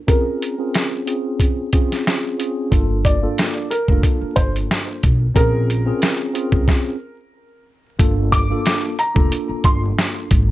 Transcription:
0.07 C4 C#4 F4 G#4 A#4, kick, closed hi-hat
0.42 closed hi-hat
0.58 C4 C#4 F4 G#4
0.74 snare, closed hi-hat
1.06 C4 C#4 F4 G#4, closed hi-hat
1.40 kick, closed hi-hat
1.73 C4 C#4 F4 G#4, kick, closed hi-hat
1.92 snare, closed hi-hat
2.06 C4 C#4 F4 G#4, snare, closed hi-hat
2.38 C4 C#4 F4 G#4, closed hi-hat
2.70 G1 A#3 D4 F4 A4, kick, closed hi-hat
3.05 D5, kick, closed hi-hat
3.22 A#3 D4 F4 A4
3.38 snare, closed hi-hat
3.70 A#4, closed hi-hat
3.88 F1 A#3 D4 F4 A4, kick
4.03 kick, closed hi-hat
4.22 muted upright bass stroke
4.36 G1 C5, kick, closed hi-hat
4.56 closed hi-hat
4.71 snare, closed hi-hat
5.03 B1, kick, closed hi-hat
5.34 A#1 C4 C#4 F4 G#4 A#4, kick, closed hi-hat
5.70 closed hi-hat
5.86 C4 C#4 F4 G#4
6.02 snare, closed hi-hat
6.33 C4 C#4 F4 G#4, closed hi-hat
6.52 C#2, kick
6.68 kick, snare
7.99 G1 A#3 D4 F4 A4, kick, closed hi-hat
8.32 D6, kick, closed hi-hat
8.50 A#3 D4 F4 A4
8.66 snare, closed hi-hat
8.99 A#5, closed hi-hat
9.14 F1 A#3 D4 F4 A4, kick
9.32 closed hi-hat
9.49 muted upright bass stroke
9.64 G1 C6, kick, closed hi-hat
9.99 snare, closed hi-hat
10.31 G#1, kick, closed hi-hat

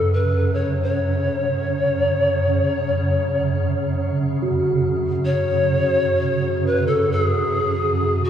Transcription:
Already playing: F#2 C#3 A4
0.14 B4
0.54 C#5
0.83 C#5
4.42 F#4
5.25 C#5
6.67 B4
6.87 A4
7.12 A4
7.23 G#4
8.25 F#4

